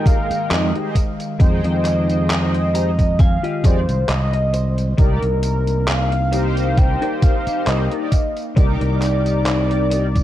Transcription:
Already playing: ambient pad D#3 G#3 G5, analog polysynth G#3 D#4 A#4 G5, clean electric guitar F4 G4 G#4 D#5
0.06 soft synth lead F5, kick, closed hi-hat, tambourine
0.31 muted fretless electric bass stroke, closed hi-hat, tambourine
0.50 fretless electric bass F2, soft synth lead D#5, muted clean electric guitar stroke, clap, closed hi-hat, tambourine
0.74 analog polysynth D#4 G4 G#4 C5, muted clean electric guitar stroke, closed hi-hat
0.95 muted clean electric guitar stroke, kick, closed hi-hat, tambourine
1.20 closed hi-hat, tambourine
1.39 fretless electric bass F2, analog polysynth D#4 G#4 C5 G5, soft synth lead D#5, muted clean electric guitar stroke, kick, closed hi-hat, tambourine
1.64 fretless electric bass F2, muted clean electric guitar stroke, closed hi-hat
1.85 clap, closed hi-hat, tambourine
2.10 closed hi-hat, tambourine
2.30 clap, closed hi-hat, tambourine
2.54 muted clean electric guitar stroke, closed hi-hat
2.74 analog polysynth D#4 G4 G#4 C5, clean electric guitar A#5, muted clean electric guitar stroke, closed hi-hat, tambourine
2.98 muted clean electric guitar stroke, kick, closed hi-hat, tambourine
3.19 soft synth lead F5, clean electric guitar G#5, kick, closed hi-hat, tambourine
3.43 clean electric guitar F4 G4 G#4 D#5 G5, closed hi-hat
3.63 fretless electric bass F2, analog polysynth D#4 G4 G#4 D5, soft synth lead C5, clean electric guitar F5, kick, closed hi-hat, tambourine
3.89 fretless electric bass C2, closed hi-hat, tambourine
4.08 fretless electric bass C2, clean electric guitar D#5, soft synth lead D#5, muted clean electric guitar stroke, clap, closed hi-hat, tambourine
4.33 clean electric guitar D#5, muted clean electric guitar stroke, closed hi-hat
4.53 clean electric guitar C5, muted clean electric guitar stroke, closed hi-hat, tambourine
4.78 closed hi-hat, tambourine
4.98 fretless electric bass C2, ambient pad A#3 D#4, analog polysynth D#4 G4 A#4 D5, soft synth lead A#4, muted clean electric guitar stroke, kick, closed hi-hat, tambourine
5.22 fretless electric bass C2, muted clean electric guitar stroke, closed hi-hat
5.43 closed hi-hat, tambourine
5.67 closed hi-hat, tambourine
5.88 soft synth lead F5, clap, closed hi-hat, tambourine
6.12 muted clean electric guitar stroke, closed hi-hat
6.32 analog polysynth D#4 G4 A#4 C5, muted clean electric guitar stroke, closed hi-hat, tambourine
6.57 muted clean electric guitar stroke, closed hi-hat, tambourine
6.77 soft synth lead G5, kick, closed hi-hat, tambourine
7.01 clean electric guitar D#4 A#4 C5 D5, closed hi-hat
7.22 soft synth lead F5, kick, closed hi-hat, tambourine
7.47 muted fretless electric bass stroke, closed hi-hat, tambourine
7.66 fretless electric bass C2, soft synth lead D#5, muted clean electric guitar stroke, clap, closed hi-hat, tambourine
7.91 analog polysynth D#4 G4 A#4 D5, muted clean electric guitar stroke, closed hi-hat
8.12 muted clean electric guitar stroke, kick, closed hi-hat, tambourine
8.37 closed hi-hat, tambourine
8.55 fretless electric bass C2, ambient pad C4, analog polysynth D#4 G4 A#4 D6, soft synth lead D5, muted clean electric guitar stroke, kick, closed hi-hat, tambourine
8.81 fretless electric bass C2, muted clean electric guitar stroke, closed hi-hat
9.02 clap, closed hi-hat, tambourine
9.26 closed hi-hat, tambourine
9.46 clap, closed hi-hat, tambourine
9.70 muted clean electric guitar stroke, closed hi-hat
9.90 analog polysynth D#4 G4 A#4 D5, muted clean electric guitar stroke, closed hi-hat, tambourine
10.15 muted clean electric guitar stroke, kick, closed hi-hat, tambourine

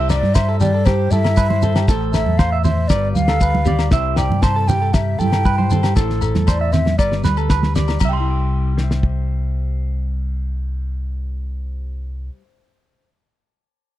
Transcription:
Already playing: fingered electric bass C2, clean electric guitar G3 E4 G4 C5
0.09 flute D5, clean electric guitar D5, snare, low agogo, shekere
0.22 fingered electric bass G2, snare, high conga
0.34 clean electric guitar C5, flute E5, kick, snare, low agogo, shekere
0.49 clean electric guitar A4
0.60 clean electric guitar G3 G4, flute D5, snare, low conga, shekere
0.74 clean electric guitar A4
0.85 clean electric guitar G4, flute C5, kick, snare, low agogo, shekere
1.11 fingered electric bass G2, clean electric guitar E4 A4, flute E5, snare, high conga, shekere
1.24 snare, low agogo
1.37 clean electric guitar G3 B4, kick, shekere
1.50 clean electric guitar C5, high conga
1.62 clean electric guitar A4 C5, low conga, shekere
1.76 clean electric guitar G4, snare, low agogo, shekere
1.88 fingered electric bass A1, clean electric guitar A2 A4 C5, muted clean electric guitar stroke, kick, snare, shekere
2.13 clean electric guitar A4, flute E5, snare, low agogo, shekere
2.26 fingered electric bass E2, high conga
2.38 clean electric guitar C5, flute F5, kick, snare, low agogo, shekere
2.52 clean electric guitar E5
2.63 clean electric guitar C5, flute E5, snare, low conga, shekere
2.88 fingered electric bass G1, clean electric guitar G3 B4 D5, flute D5, kick, snare, low agogo, shekere
3.14 fingered electric bass D2, flute F5, high conga, shekere
3.28 clean electric guitar A4, snare, low agogo
3.41 clean electric guitar B4, kick, shekere
3.55 high conga
3.65 clean electric guitar G4 D5, low conga, shekere
3.79 snare, low agogo, shekere
3.91 fingered electric bass C2, clean electric guitar C3 E4 G4 C5 E5, kick, snare, shekere
4.16 clean electric guitar D5, flute G5, snare, low agogo, shekere
4.29 fingered electric bass G2, high conga
4.42 clean electric guitar C5, flute A5, kick, snare, low agogo, shekere
4.56 clean electric guitar A4
4.68 clean electric guitar G3 G4, flute G5, low conga, shekere
4.82 clean electric guitar A4
4.93 clean electric guitar G4, flute E5, muted clean electric guitar stroke, kick, snare, low agogo, shekere
5.19 fingered electric bass G2, clean electric guitar E4 A4, flute G5, high conga, shekere
5.32 snare, low agogo
5.45 clean electric guitar G3 B4, kick, shekere
5.58 clean electric guitar C5, high conga
5.70 clean electric guitar A4 C5, low conga, shekere
5.83 clean electric guitar G4, snare, low agogo, shekere
5.95 fingered electric bass A1, clean electric guitar A2 E4 A4 C5, kick, snare, shekere
6.10 snare
6.21 clean electric guitar A4, low agogo, shekere
6.35 fingered electric bass E2, snare, high conga, shekere
6.47 clean electric guitar C5, flute D5, kick, snare, low agogo, shekere
6.61 clean electric guitar E5
6.72 clean electric guitar C4, flute E5, muted clean electric guitar stroke, snare, low conga, shekere
6.86 snare, high conga
6.98 fingered electric bass G1, clean electric guitar G3 B4 D5, flute D5, kick, low agogo, shekere
7.12 snare
7.24 fingered electric bass D2, clean electric guitar B4, snare, high conga, shekere
7.37 clean electric guitar A4, low agogo, shekere
7.49 clean electric guitar B4, kick, snare, shekere
7.63 snare, high conga
7.75 clean electric guitar G4 D5, snare, low conga, shekere
7.87 snare, low agogo, shekere
8.00 fingered electric bass C2, clean electric guitar C3, muted clean electric guitar stroke, kick, crash, high conga, low agogo, shekere
8.05 clean electric guitar E5 G5
8.10 clean electric guitar G3 C6
8.20 clean electric guitar E4
8.30 clean electric guitar G4
8.40 muted clean electric guitar stroke
8.77 clean electric guitar C5, snare
8.84 clean electric guitar E5
8.91 snare
9.03 kick

